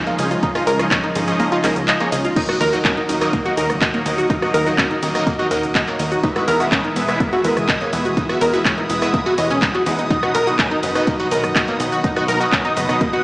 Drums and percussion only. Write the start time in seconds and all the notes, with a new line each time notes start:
0.07 closed hi-hat
0.19 open hi-hat, ride, shaker
0.31 closed hi-hat, shaker
0.43 kick, closed hi-hat, shaker
0.55 cross-stick, open hi-hat
0.67 open hi-hat, ride, shaker
0.79 cross-stick, closed hi-hat, shaker
0.91 kick, clap, closed hi-hat, shaker
1.04 closed hi-hat
1.15 open hi-hat, ride, shaker
1.28 closed hi-hat, shaker
1.40 open hi-hat, shaker
1.52 closed hi-hat
1.64 clap, open hi-hat, ride, shaker
1.76 closed hi-hat, shaker
1.88 clap, closed hi-hat, shaker
2.00 closed hi-hat
2.12 open hi-hat, ride, shaker
2.25 closed hi-hat, shaker
2.36 kick, closed hi-hat, crash, shaker
2.49 cross-stick, closed hi-hat
2.61 open hi-hat, ride, shaker
2.73 closed hi-hat, shaker
2.85 kick, clap, closed hi-hat, shaker
2.97 closed hi-hat
3.09 open hi-hat, ride, shaker
3.21 cross-stick, closed hi-hat, shaker
3.33 kick, closed hi-hat, shaker
3.46 closed hi-hat
3.57 open hi-hat, ride, shaker
3.70 cross-stick, closed hi-hat, shaker
3.82 kick, clap, closed hi-hat, shaker
3.94 closed hi-hat
4.06 open hi-hat, ride, shaker
4.18 closed hi-hat, shaker
4.30 kick, closed hi-hat, shaker
4.42 cross-stick, closed hi-hat
4.54 open hi-hat, ride, shaker
4.67 closed hi-hat, shaker
4.78 kick, clap, closed hi-hat, shaker
4.91 closed hi-hat
5.03 open hi-hat, ride, shaker
5.15 cross-stick, closed hi-hat, shaker
5.27 kick, closed hi-hat, shaker
5.39 closed hi-hat
5.51 open hi-hat, ride, shaker
5.63 closed hi-hat, shaker
5.75 kick, clap, closed hi-hat, shaker
5.88 clap, closed hi-hat
5.99 open hi-hat, ride, shaker
6.12 closed hi-hat, shaker
6.23 kick, closed hi-hat, shaker
6.36 cross-stick, closed hi-hat
6.48 open hi-hat, ride, shaker
6.60 closed hi-hat, shaker
6.72 kick, clap, closed hi-hat, shaker
6.84 closed hi-hat
6.96 open hi-hat, ride, shaker
7.09 cross-stick, closed hi-hat, shaker
7.20 kick, closed hi-hat, shaker
7.33 closed hi-hat
7.44 open hi-hat, ride, shaker
7.57 cross-stick, closed hi-hat, shaker
7.69 kick, clap, closed hi-hat, shaker
7.81 closed hi-hat
7.93 open hi-hat, ride, shaker
8.05 closed hi-hat, shaker
8.17 kick, closed hi-hat, shaker
8.29 cross-stick, closed hi-hat
8.41 open hi-hat, ride, shaker
8.54 closed hi-hat, shaker
8.65 kick, clap, closed hi-hat, shaker
8.78 closed hi-hat
8.90 open hi-hat, ride, shaker
9.02 cross-stick, shaker
9.14 kick, closed hi-hat, shaker
9.26 closed hi-hat
9.38 open hi-hat, ride, shaker
9.50 closed hi-hat, shaker
9.62 kick, clap, closed hi-hat, shaker
9.74 clap, closed hi-hat
9.86 open hi-hat, ride, shaker
9.99 closed hi-hat, shaker
10.10 kick, closed hi-hat, shaker
10.23 cross-stick, closed hi-hat
10.35 open hi-hat, ride, shaker
10.47 closed hi-hat, shaker
10.59 kick, clap, closed hi-hat, shaker
10.71 closed hi-hat
10.83 open hi-hat, ride, shaker
10.95 cross-stick, closed hi-hat, shaker
11.07 kick, closed hi-hat, shaker
11.20 closed hi-hat
11.31 open hi-hat, ride, shaker
11.44 cross-stick, closed hi-hat, shaker
11.56 kick, clap, closed hi-hat, shaker
11.68 closed hi-hat
11.80 open hi-hat, ride, shaker
11.92 closed hi-hat, shaker
12.04 kick, closed hi-hat, shaker
12.16 cross-stick, closed hi-hat
12.28 open hi-hat, ride, shaker
12.41 closed hi-hat, shaker
12.52 kick, clap, closed hi-hat, shaker
12.65 closed hi-hat
12.77 open hi-hat, ride, shaker
12.89 cross-stick, closed hi-hat, shaker
13.01 kick, closed hi-hat, shaker
13.13 closed hi-hat